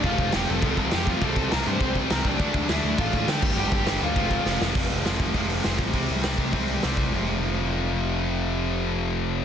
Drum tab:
CC |x-x-x-x-|x-x-x-x-|x-x-x-xx|x-x-x---|
HH |--------|--------|--------|--------|
SD |--o---o-|--o---o-|--o---o-|--o---oo|
BD |oo--oo-o|oo--oo-o|oo--oo-o|-o--oo--|

CC |x-------|--------|--------|--------|
HH |-ooooooo|oooooooo|--------|--------|
SD |--o---o-|--o---o-|--------|--------|
BD |o--oo--o|o--oo--o|--------|--------|